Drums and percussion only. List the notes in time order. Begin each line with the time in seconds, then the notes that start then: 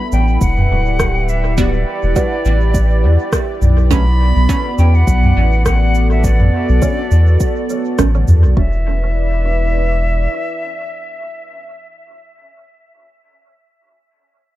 0.12 shaker
0.41 kick, shaker
0.57 mid tom
1.00 kick, cross-stick, shaker
1.29 shaker
1.58 kick, shaker
2.16 kick, shaker
2.45 shaker
2.74 kick, shaker
3.33 kick, cross-stick, shaker
3.62 mid tom, shaker
3.91 kick, shaker
4.49 kick, shaker
4.78 shaker
5.07 kick, shaker
5.24 mid tom
5.66 kick, cross-stick, shaker
5.95 shaker
6.24 kick, shaker
6.40 mid tom
6.82 kick, shaker
7.11 shaker
7.40 kick, shaker
7.70 shaker
7.99 kick, cross-stick, shaker
8.28 mid tom, shaker
8.57 kick